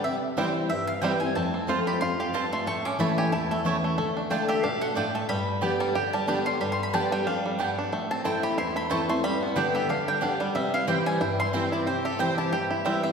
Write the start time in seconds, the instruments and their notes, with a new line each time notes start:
0.04 steel-string acoustic guitar C3, mandolin E5
0.37 steel-string acoustic guitar E3 G3 C4 E4, five-string banjo G3 C4 E4, mandolin C4 E4 C5 G5
0.70 steel-string acoustic guitar G2, mandolin E5
0.87 mandolin F5
1.01 steel-string acoustic guitar E3 G3 C4 E4, five-string banjo G3 C4 E4, mandolin C4 E4 C5 G5
1.20 steel-string acoustic guitar C4 E4, mandolin G#5
1.35 steel-string acoustic guitar F2, five-string banjo A3, mandolin A5
1.54 five-string banjo C4
1.67 steel-string acoustic guitar F3 A3 C4 F4, mandolin C4 F4 C5 A5, five-string banjo F4
1.87 five-string banjo G4, mandolin B5
2.01 steel-string acoustic guitar F2, five-string banjo F4, mandolin C6
2.20 five-string banjo G4, mandolin F5
2.33 steel-string acoustic guitar G2, mandolin C4 F4 C5 A5, five-string banjo F4
2.53 five-string banjo A3, mandolin C6
2.67 steel-string acoustic guitar A2, five-string banjo A3, mandolin C#6
2.85 five-string banjo C#4, mandolin D6
2.99 steel-string acoustic guitar E3 A3 C#4 E4, mandolin A3 E4 C#5 A5 B5, five-string banjo E4
3.18 five-string banjo G4, mandolin G#5
3.32 steel-string acoustic guitar E2, five-string banjo E4, mandolin A5
3.51 five-string banjo A3, mandolin E5
3.64 steel-string acoustic guitar E3 A3 C#4 E4, mandolin A3 E4 C#5 A5, five-string banjo E4
3.84 five-string banjo A3
3.98 steel-string acoustic guitar D3, five-string banjo A3
4.17 five-string banjo D4
4.30 steel-string acoustic guitar D3 A3 D4 F4, mandolin A3 F4 D5 G5 A5, five-string banjo D4
4.48 five-string banjo G4, mandolin E5
4.63 steel-string acoustic guitar B2, five-string banjo D4, mandolin F5
4.81 five-string banjo A3, mandolin F#5
4.95 steel-string acoustic guitar A2, mandolin A3 F4 D5 G5 A5, five-string banjo D4
5.15 five-string banjo A3, mandolin A5
5.29 steel-string acoustic guitar G2, five-string banjo G3, mandolin B5
5.61 steel-string acoustic guitar D3 G3 B3 G4, mandolin B3 G4 D5 G5, five-string banjo G4
5.80 five-string banjo G3, mandolin A5
5.95 steel-string acoustic guitar D3, five-string banjo G4, mandolin G5
6.13 five-string banjo G3, mandolin A5
6.27 steel-string acoustic guitar D3 G3 B3 G4, mandolin B3 G4 D5 G5 B5, five-string banjo D4
6.46 five-string banjo G3, mandolin C6
6.61 steel-string acoustic guitar G2, five-string banjo G3, mandolin B5
6.72 mandolin C6
6.83 mandolin B5
6.93 steel-string acoustic guitar D3 G3 B3 G4, mandolin B3 G4 D5 G5 A5, five-string banjo G4
7.12 five-string banjo G3, mandolin G5
7.27 steel-string acoustic guitar F2, five-string banjo D4, mandolin F5
7.46 five-string banjo G3
7.59 steel-string acoustic guitar G2, mandolin B3 G4 D5 G5, five-string banjo B3
7.79 five-string banjo D4
7.92 steel-string acoustic guitar A2, five-string banjo A3
8.11 five-string banjo C4, mandolin A5
8.24 steel-string acoustic guitar E3 A3 C4 E4, mandolin A3 E4 C5 G5 A5, five-string banjo E4
8.43 five-string banjo G4, mandolin B5
8.58 steel-string acoustic guitar E2, five-string banjo E4, mandolin C6
8.76 five-string banjo A3, mandolin B5
8.90 steel-string acoustic guitar E3 A3 C4 E4, mandolin A3 E4 C5 A5 C#6, five-string banjo E4
9.09 five-string banjo A3, steel-string acoustic guitar C4 E4, mandolin C6
9.23 steel-string acoustic guitar G2, five-string banjo G3, mandolin B5
9.43 five-string banjo B3
9.56 steel-string acoustic guitar D3 G3 B3 G4, mandolin B3 G4 D5 G5, five-string banjo D4
9.75 five-string banjo G4, mandolin E5
9.89 steel-string acoustic guitar D3, five-string banjo D4, mandolin F5
10.08 five-string banjo G3, mandolin G5
10.21 steel-string acoustic guitar D3 G3 B3 G4, mandolin B3 G4 D5 F5 G5, five-string banjo D4
10.40 five-string banjo G3, mandolin D5
10.55 steel-string acoustic guitar C3, five-string banjo G3, mandolin E5
10.74 five-string banjo E4, mandolin F5
10.87 steel-string acoustic guitar E3 G3 C4 E4, mandolin C4 E4 C5 G5, five-string banjo G4
11.06 five-string banjo G3, mandolin G#5
11.20 steel-string acoustic guitar G2, five-string banjo E4, mandolin G5
11.40 five-string banjo G3, mandolin C6
11.53 steel-string acoustic guitar E3 G3 C4 E4, mandolin C4 E4 C5 G5, five-string banjo C4
11.72 five-string banjo E4, mandolin D5
11.86 steel-string acoustic guitar C3, five-string banjo C4, fiddle G4, mandolin C5
12.04 five-string banjo G4, fiddle A4, mandolin E5
12.19 steel-string acoustic guitar E3 G3 C4 E4, mandolin C4 E4 C5 G5, five-string banjo C4, fiddle C5
12.37 five-string banjo E4, fiddle G4, mandolin A5
12.52 steel-string acoustic guitar G2, five-string banjo G4, mandolin G5
12.71 five-string banjo E4
12.85 steel-string acoustic guitar E3 G3 C4 E4, five-string banjo G3, mandolin C4 E4 C5 E5 G5
13.03 five-string banjo C4, mandolin E5